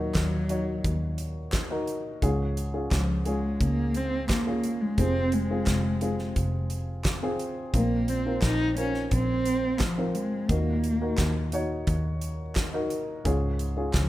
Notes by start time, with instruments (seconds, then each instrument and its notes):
Already playing: picked electric bass D#2, upright piano A#2, cello F#3
0.00 upright piano D#4 F#4 A#4
0.14 picked electric bass D#2, kick, snare, clap, closed hi-hat
0.49 upright piano D#4 F#4 C#5, closed hi-hat
0.84 picked electric bass D#2, kick, closed hi-hat
1.18 closed hi-hat
1.52 kick, snare, clap, closed hi-hat
1.70 upright piano D#4 F#4 A#4
1.87 closed hi-hat
2.22 picked electric bass C#2, upright piano G#2 C#4 F4 G#4, kick, closed hi-hat
2.57 closed hi-hat
2.74 upright piano C#4 F4 G#4
2.91 picked electric bass C#2, cello F3, kick, snare, clap, closed hi-hat
3.26 cello G#3, upright piano C#4 F4 G#4, closed hi-hat
3.61 picked electric bass C#2, cello A#3, kick, closed hi-hat
3.94 cello C4, closed hi-hat
4.29 cello A#3, kick, snare, clap, closed hi-hat
4.47 upright piano C#4 F4 G#4
4.64 closed hi-hat
4.81 cello G#3
4.98 picked electric bass F1, upright piano C3 C4 F4 G#4, cello C4, kick, closed hi-hat
5.32 cello G#3, closed hi-hat
5.50 upright piano C4 F4 G#4
5.66 picked electric bass F1, kick, snare, clap, closed hi-hat
6.01 upright piano C4 F4 G#4, closed hi-hat
6.19 snare
6.36 picked electric bass F1, kick, closed hi-hat
6.70 closed hi-hat
7.04 kick, snare, clap, closed hi-hat
7.22 upright piano C4 F4 G#4
7.39 closed hi-hat
7.74 picked electric bass A#1, upright piano A#2 F3 C4 F4 A#4, cello A#3, kick, closed hi-hat
8.08 cello C4, closed hi-hat
8.26 upright piano C4 F4 A#4
8.42 picked electric bass A#1, cello D#4, kick, snare, clap, closed hi-hat
8.77 cello C#4, upright piano F4 A#4 C5, closed hi-hat
8.94 snare
9.11 picked electric bass A#1, cello C4, kick, closed hi-hat
9.46 closed hi-hat
9.79 cello F3, kick, snare, clap, closed hi-hat
9.98 upright piano C4 F4 A#4
10.15 cello G#3, closed hi-hat
10.49 picked electric bass D#2, upright piano A#2 D#4 F#4 A#4, cello A#3, kick, closed hi-hat
10.84 closed hi-hat
11.01 upright piano D#4 F#4 A#4
11.17 picked electric bass D#2, kick, snare, clap, closed hi-hat
11.52 upright piano D#4 F#4 C#5, closed hi-hat
11.87 picked electric bass D#2, kick, closed hi-hat
12.21 closed hi-hat
12.55 kick, snare, clap, closed hi-hat
12.74 upright piano D#4 F#4 A#4
12.90 closed hi-hat
13.25 picked electric bass C#2, upright piano G#2 C#4 F4 G#4, kick, closed hi-hat
13.59 closed hi-hat
13.76 upright piano C#4 F4 G#4
13.93 picked electric bass C#2, cello F3, kick, snare, clap, closed hi-hat